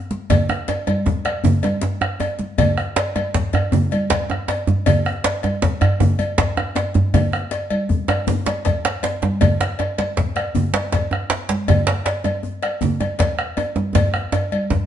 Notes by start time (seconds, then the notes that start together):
0.11 djembe slap, high conga
0.30 bombo rim, bombo low, cowbell, djembe slap, djembe tone, djembe bass, low conga
0.49 bombo rim, djembe tone
0.68 cowbell, djembe slap, djembe tone
0.87 cowbell, high conga, djembe tone
1.06 bombo low, djembe tone
1.25 bombo rim, cowbell, djembe slap, high conga
1.44 djembe tone, djembe bass, low conga
1.63 cowbell, djembe tone, high conga
1.81 djembe slap, djembe tone
2.01 bombo rim, djembe tone
2.20 cowbell, djembe tone
2.39 djembe slap, high conga
2.58 bombo rim, bombo low, cowbell, djembe slap, djembe bass, low conga
2.77 bombo rim, djembe tone
2.96 cowbell, djembe slap
3.16 cowbell, djembe tone, high conga
3.34 bombo low, djembe slap, djembe tone
3.53 bombo rim, cowbell, djembe slap, high conga, djembe bass
3.72 djembe tone, djembe bass, low conga
3.91 cowbell, djembe tone, high conga
4.10 bombo low, cowbell, djembe slap
4.30 bombo rim, djembe tone
4.48 cowbell, djembe slap, djembe tone
4.67 djembe slap, high conga, djembe bass
4.86 bombo rim, bombo low, cowbell, djembe tone, djembe bass, low conga
5.05 bombo rim, djembe tone
5.24 bombo rim, cowbell, djembe slap, high conga
5.43 bombo rim, cowbell, djembe slap, djembe tone, high conga
5.62 bombo rim, bombo low, djembe slap, djembe tone
5.81 bombo rim, cowbell, djembe slap, djembe bass
6.00 bombo rim, djembe tone, high conga, djembe bass, low conga
6.19 cowbell, djembe slap, high conga, djembe tone
6.38 bombo low, cowbell, djembe slap
6.57 bombo rim, djembe tone
6.75 bombo rim, cowbell, djembe slap, djembe tone
6.94 djembe slap, high conga, djembe bass
7.14 bombo rim, bombo low, cowbell, djembe slap, djembe tone, djembe bass, low conga
7.32 bombo rim, djembe tone
7.51 cowbell, djembe slap
7.70 cowbell, high conga
7.89 bombo low, djembe tone
8.08 bombo rim, cowbell, djembe slap, djembe tone, high conga
8.27 djembe tone, djembe bass, low conga
8.46 cowbell, djembe slap, djembe tone, high conga
8.65 bombo low, cowbell, djembe slap, djembe tone, high conga
8.85 bombo rim, djembe slap
9.03 cowbell, djembe slap, djembe tone
9.22 djembe slap, high conga, djembe tone
9.41 bombo rim, bombo low, cowbell, djembe slap, djembe tone, djembe bass, low conga
9.60 bombo rim, djembe slap, djembe tone
9.79 cowbell, djembe tone
9.98 cowbell, djembe slap, high conga
10.17 bombo low, djembe slap, djembe tone
10.36 bombo rim, cowbell, djembe slap, high conga
10.55 djembe bass, low conga
10.73 cowbell, djembe slap, djembe tone, high conga
10.92 bombo low, cowbell, djembe slap
11.11 bombo rim, djembe tone
11.30 djembe slap, djembe tone
11.49 djembe slap, high conga
11.68 bombo rim, bombo low, cowbell, djembe slap, djembe tone, djembe bass, low conga
11.87 bombo rim, djembe slap, djembe tone
12.06 cowbell, djembe slap
12.24 cowbell, djembe tone, high conga
12.43 djembe tone
12.62 bombo rim, cowbell, djembe slap, high conga
12.81 djembe tone, djembe bass, low conga
13.00 cowbell, djembe tone, high conga
13.19 bombo low, cowbell, djembe slap, high conga
13.39 bombo rim
13.57 cowbell, djembe tone
13.76 djembe slap, high conga, djembe tone
13.95 bombo low, cowbell, high conga, djembe tone, low conga, djembe bass
14.14 bombo rim, djembe tone
14.32 bombo rim, cowbell, djembe slap, djembe tone, high conga
14.52 cowbell, high conga
14.70 bombo low, djembe tone